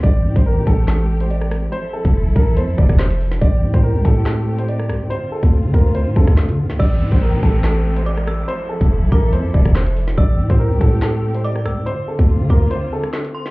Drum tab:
CC |----------------|----------------|----------------|----------------|
HH |x--x--x-x--xx-x-|x--x--x-x--xxxo-|x--x--x-x--xx-x-|x--x--x-x--xxx--|
CP |--------x-------|------------x---|--------x-------|------------x---|
SD |--------o----rr-|-----------ro--o|--------o----rr-|-----------ro--o|
BD |o--o--o---------|---o--o---oo----|o--o--o---------|---o--o---oo----|

CC |x---------------|----------------|----------------|----------------|
HH |x--x--x-x--xx-x-|x--x--x-x--xxxo-|x--x--x-x--xx-x-|x--x--x-x--xxx--|
CP |--------x-------|------------x---|--------x-------|------------x---|
SD |--------o----rr-|-----------ro--o|--------o----rr-|-----------ro--o|
BD |o--o--o---------|---o--o---oo----|o--o--o---------|---o--o---------|